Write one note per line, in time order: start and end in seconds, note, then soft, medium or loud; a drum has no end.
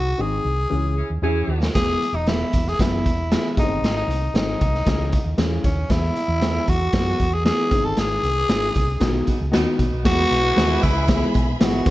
0.00 0.13 C2 medium
0.00 0.23 F#4 medium
0.18 0.38 G#1 medium
0.18 0.46 D#3 medium
0.18 0.46 C4 medium
0.18 0.46 G#4 medium
0.18 1.24 G#4 medium
0.45 0.64 C2 medium
0.70 1.01 C#2 medium
0.70 0.97 E3 medium
0.70 0.98 C#4 medium
0.70 0.98 G#4 medium
0.97 1.08 C#4 medium
0.97 1.08 E4 medium
0.97 1.08 G#4 medium
1.10 1.20 D#2 medium
1.22 1.42 E2 medium
1.22 1.50 E3 medium
1.22 1.50 C#4 medium
1.22 1.72 C#4 medium
1.22 1.72 E4 medium
1.22 1.72 G#4 loud
1.22 1.50 G#4 loud
1.47 1.68 D#2 medium
1.63 snare medium
1.75 1.95 E1 medium
1.75 2.02 E3 medium
1.75 2.03 B3 medium
1.75 2.17 G#4 loud
1.75 2.03 G#4 medium
1.75 kick medium
1.75 snare medium
1.75 closed hi-hat medium
2.02 closed hi-hat medium
2.12 2.42 E1 medium
2.12 2.29 D#4 medium
2.27 2.54 E3 medium
2.27 2.55 B3 medium
2.27 2.70 E4 medium
2.27 2.55 G#4 medium
2.27 snare medium
2.27 closed hi-hat medium
2.53 2.73 E1 medium
2.53 kick medium
2.53 closed hi-hat medium
2.67 2.80 G#4 loud
2.67 snare soft
2.79 3.06 F#1 medium
2.79 3.06 E3 medium
2.79 3.07 B3 medium
2.79 3.54 E4 medium
2.79 3.07 G#4 medium
2.79 kick medium
2.79 snare loud
2.79 closed hi-hat medium
3.06 3.35 E1 medium
3.06 kick medium
3.06 closed hi-hat medium
3.31 3.57 E3 medium
3.31 3.57 B3 medium
3.31 3.56 G#4 medium
3.31 snare loud
3.31 closed hi-hat medium
3.57 3.67 G#1 medium
3.57 4.19 D#3 medium
3.57 3.63 A3 soft
3.57 3.94 D#4 medium
3.57 4.19 G#4 medium
3.57 kick loud
3.57 closed hi-hat medium
3.63 4.22 C4 medium
3.69 3.79 G1 medium
3.82 4.02 G#1 medium
3.82 snare medium
3.82 closed hi-hat medium
3.97 4.32 D#4 medium
4.08 4.27 C2 medium
4.08 closed hi-hat medium
4.34 4.53 G#1 medium
4.34 4.61 D#3 medium
4.34 4.61 C4 medium
4.34 5.36 D#4 medium
4.34 4.62 G#4 medium
4.34 snare loud
4.34 closed hi-hat medium
4.61 4.81 C2 medium
4.61 kick medium
4.61 closed hi-hat medium
4.75 snare soft
4.86 5.16 C#2 loud
4.86 5.13 E3 medium
4.86 5.14 C#4 medium
4.86 5.14 G#4 medium
4.86 kick loud
4.86 snare loud
4.86 closed hi-hat medium
5.12 kick medium
5.12 closed hi-hat medium
5.25 5.35 D#2 medium
5.38 5.58 E2 medium
5.38 5.65 E3 medium
5.38 5.65 C#4 medium
5.38 5.65 G#4 medium
5.38 snare loud
5.38 closed hi-hat medium
5.64 5.84 D#2 medium
5.64 5.93 C#4 medium
5.64 kick loud
5.64 closed hi-hat medium
5.88 6.09 E2 medium
5.88 6.16 E3 medium
5.88 6.17 B3 medium
5.88 6.70 E4 loud
5.88 6.17 G#4 medium
5.88 kick medium
5.88 snare medium
5.88 closed hi-hat medium
6.16 closed hi-hat medium
6.28 6.58 E2 medium
6.41 6.68 E3 medium
6.41 6.69 B3 medium
6.41 6.69 G#4 medium
6.41 snare loud
6.41 closed hi-hat medium
6.67 6.87 E2 medium
6.67 7.35 F#4 loud
6.67 kick medium
6.67 closed hi-hat medium
6.93 7.13 F#2 medium
6.93 7.21 E3 medium
6.93 7.21 B3 medium
6.93 7.21 G#4 medium
6.93 kick loud
6.93 snare loud
6.93 closed hi-hat medium
7.19 7.49 E2 medium
7.19 kick medium
7.19 closed hi-hat medium
7.34 7.45 G#4 medium
7.45 7.71 E3 medium
7.45 7.71 B3 medium
7.45 7.71 G#4 medium
7.45 7.87 G#4 loud
7.45 snare loud
7.45 closed hi-hat medium
7.71 7.81 G#1 medium
7.71 8.34 D#3 medium
7.71 8.34 C4 medium
7.71 8.34 G#4 medium
7.71 kick loud
7.71 closed hi-hat medium
7.84 7.94 G1 medium
7.84 8.01 A4 medium
7.97 8.17 G#1 medium
7.97 9.54 G#4 loud
7.97 snare medium
7.97 closed hi-hat medium
8.23 8.43 C2 medium
8.23 closed hi-hat medium
8.49 8.69 G#1 medium
8.49 8.76 D#3 medium
8.49 8.77 C4 medium
8.49 8.77 G#4 medium
8.49 snare loud
8.49 closed hi-hat medium
8.75 8.95 C2 medium
8.75 kick medium
8.75 closed hi-hat medium
9.00 9.21 B1 loud
9.00 9.28 D#3 medium
9.00 9.28 B3 medium
9.00 9.29 F#4 medium
9.00 kick medium
9.00 snare loud
9.00 closed hi-hat medium
9.27 9.39 B3 medium
9.27 9.39 D#4 medium
9.27 9.39 F#4 medium
9.27 muted fingered electric bass stroke soft
9.27 kick medium
9.27 closed hi-hat medium
9.41 9.51 C#2 medium
9.52 9.64 D#2 medium
9.52 9.80 D#3 medium
9.52 9.79 B3 medium
9.52 10.03 B3 medium
9.52 10.03 D#4 medium
9.52 9.80 F#4 loud
9.52 10.03 F#4 medium
9.52 snare loud
9.52 closed hi-hat medium
9.79 9.89 B1 medium
9.79 kick medium
9.79 closed hi-hat medium
9.93 10.02 B1 medium
10.04 10.25 E2 medium
10.04 10.32 E3 medium
10.04 11.85 E3 medium
10.04 10.32 G#3 medium
10.04 11.90 G#3 medium
10.04 10.32 B3 medium
10.04 11.85 B3 medium
10.04 11.84 E4 medium
10.04 11.58 E4 medium
10.04 10.84 F#4 loud
10.04 10.32 G#4 medium
10.04 11.83 G#4 medium
10.04 11.58 G#4 medium
10.04 11.58 B4 medium
10.04 11.83 E5 medium
10.04 11.83 B5 medium
10.04 kick loud
10.04 snare medium
10.04 crash medium
10.31 10.51 B1 loud
10.31 closed hi-hat medium
10.56 10.76 D#2 medium
10.56 10.83 E3 medium
10.56 10.84 G#3 medium
10.56 10.84 B3 medium
10.56 10.84 G#4 medium
10.56 snare loud
10.56 closed hi-hat medium
10.82 11.22 C#2 medium
10.82 11.34 E4 medium
10.82 kick medium
10.82 closed hi-hat medium
11.08 11.36 E3 medium
11.08 11.36 G#3 medium
11.08 11.36 B3 medium
11.08 11.36 G#4 medium
11.08 kick loud
11.08 snare loud
11.08 closed hi-hat medium
11.34 11.54 B1 medium
11.34 kick loud
11.34 closed hi-hat medium
11.60 11.80 G1 medium
11.60 11.86 E3 medium
11.60 11.86 G#3 medium
11.60 11.86 B3 medium
11.60 11.90 F#4 medium
11.60 11.87 G#4 medium
11.60 snare loud
11.60 closed hi-hat medium
11.86 11.90 G#1 loud
11.86 11.90 D#3 medium
11.86 11.90 G#3 medium
11.86 11.90 C4 medium
11.86 11.90 D#4 medium
11.86 11.90 G#4 medium
11.86 11.90 C5 medium
11.86 11.90 D#5 loud
11.86 11.90 C6 loud
11.86 kick loud
11.86 closed hi-hat medium